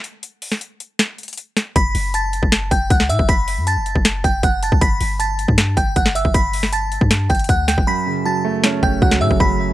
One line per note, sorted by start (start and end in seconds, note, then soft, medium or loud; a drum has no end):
0.04 closed hi-hat medium
0.23 closed hi-hat medium
0.42 open hi-hat medium
0.52 snare medium
0.61 closed hi-hat medium
0.80 closed hi-hat medium
0.99 snare loud
0.99 closed hi-hat medium
1.18 closed hi-hat soft
1.23 closed hi-hat soft
1.28 closed hi-hat medium
1.33 closed hi-hat medium
1.38 closed hi-hat medium
1.57 snare medium
1.57 closed hi-hat medium
1.76 1.94 F#1 loud
1.76 2.12 B5 loud
1.76 2.12 B6 medium
1.76 kick loud
1.76 closed hi-hat medium
1.95 2.41 F#1 loud
1.95 open hi-hat medium
2.14 2.68 A5 medium
2.14 2.68 A6 medium
2.14 closed hi-hat medium
2.33 closed hi-hat medium
2.43 2.70 F#1 loud
2.43 kick medium
2.52 snare loud
2.52 closed hi-hat medium
2.71 2.90 F#1 loud
2.71 2.88 G5 medium
2.71 2.89 G6 medium
2.71 kick medium
2.71 closed hi-hat medium
2.90 3.11 C#2 loud
2.90 3.08 F#5 medium
2.90 3.08 F#6 medium
2.90 kick medium
2.90 closed hi-hat medium
3.00 snare medium
3.09 3.19 A2 loud
3.09 3.27 E5 medium
3.09 3.27 E6 medium
3.09 closed hi-hat medium
3.19 3.59 F#1 loud
3.19 kick medium
3.29 3.65 B5 loud
3.29 3.65 B6 medium
3.29 kick loud
3.29 closed hi-hat medium
3.48 open hi-hat medium
3.57 3.78 F#2 loud
3.67 4.21 A5 medium
3.67 4.21 A6 medium
3.67 closed hi-hat medium
3.76 3.95 F#1 loud
3.86 closed hi-hat medium
3.96 4.23 F#1 loud
3.96 kick medium
4.05 snare loud
4.05 closed hi-hat medium
4.24 4.43 F#1 loud
4.24 4.41 G5 medium
4.24 4.42 G6 medium
4.24 kick medium
4.24 closed hi-hat medium
4.43 4.71 F#1 loud
4.43 4.60 F#5 medium
4.43 4.61 F#6 medium
4.43 kick loud
4.43 closed hi-hat medium
4.63 4.80 A5 medium
4.63 4.80 A6 medium
4.63 closed hi-hat medium
4.72 4.81 C#2 loud
4.72 kick medium
4.81 5.00 G1 loud
4.81 5.17 B5 loud
4.81 5.18 B6 medium
4.81 kick loud
4.81 closed hi-hat medium
5.01 5.47 G1 loud
5.01 open hi-hat medium
5.20 5.74 A5 medium
5.20 5.74 A6 medium
5.20 closed hi-hat medium
5.39 closed hi-hat medium
5.48 5.76 G2 loud
5.48 kick medium
5.58 snare loud
5.58 closed hi-hat medium
5.77 5.95 G1 loud
5.77 5.94 G5 medium
5.77 5.94 G6 medium
5.77 kick medium
5.77 closed hi-hat medium
5.96 6.24 G1 loud
5.96 6.13 F#5 medium
5.96 6.14 F#6 medium
5.96 kick medium
5.96 closed hi-hat medium
6.06 snare medium
6.15 6.32 E5 medium
6.15 6.33 E6 medium
6.15 closed hi-hat medium
6.25 6.98 G1 loud
6.25 kick medium
6.34 6.70 B5 loud
6.34 6.71 B6 medium
6.34 kick loud
6.34 closed hi-hat medium
6.53 open hi-hat medium
6.63 snare medium
6.73 7.26 A5 medium
6.73 7.27 A6 medium
6.73 closed hi-hat medium
6.92 closed hi-hat medium
7.01 7.29 G2 loud
7.01 kick medium
7.11 snare loud
7.11 closed hi-hat medium
7.30 7.48 G1 loud
7.30 7.47 G5 medium
7.30 7.47 G6 medium
7.30 kick medium
7.30 closed hi-hat soft
7.35 closed hi-hat soft
7.39 closed hi-hat medium
7.44 closed hi-hat medium
7.49 7.77 D2 loud
7.49 7.66 F#5 medium
7.49 7.67 F#6 medium
7.49 kick medium
7.49 closed hi-hat medium
7.68 7.85 G5 medium
7.68 7.86 G6 medium
7.68 snare medium
7.68 closed hi-hat medium
7.78 7.87 F#1 loud
7.78 kick medium
7.87 8.83 F#2 medium
7.87 8.23 B5 loud
7.87 8.24 B6 medium
8.06 9.02 C#3 medium
8.25 9.00 F#3 medium
8.25 8.79 A5 medium
8.25 8.80 A6 medium
8.45 9.40 A3 loud
8.64 9.59 C#4 medium
8.64 snare loud
8.83 9.01 F#1 loud
8.83 9.00 G5 medium
8.83 9.00 G6 medium
8.83 kick medium
9.02 9.23 C#2 loud
9.02 9.73 F#3 medium
9.02 9.19 F#5 medium
9.02 9.19 F#6 medium
9.02 kick medium
9.11 snare medium
9.21 9.30 A2 loud
9.21 9.58 C#3 medium
9.21 9.38 E5 medium
9.21 9.39 E6 medium
9.31 9.40 F#1 loud
9.31 kick medium
9.40 9.73 F#1 loud
9.40 9.73 F#2 medium
9.40 9.73 B5 loud
9.40 9.73 B6 medium
9.40 kick loud
9.59 9.73 C#3 medium